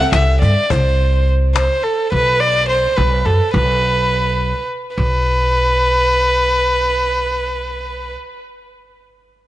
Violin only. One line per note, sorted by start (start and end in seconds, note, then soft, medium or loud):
0.00 0.11 F#5 medium
0.14 0.40 E5 medium
0.42 0.72 D5 medium
0.71 1.27 C5 medium
1.55 1.85 C5 medium
1.83 2.12 A4 medium
2.13 2.42 B4 medium
2.40 2.68 D5 loud
2.69 2.98 C5 loud
2.97 3.27 B4 medium
3.26 3.54 A4 medium
3.55 4.64 B4 medium
4.95 8.12 B4 medium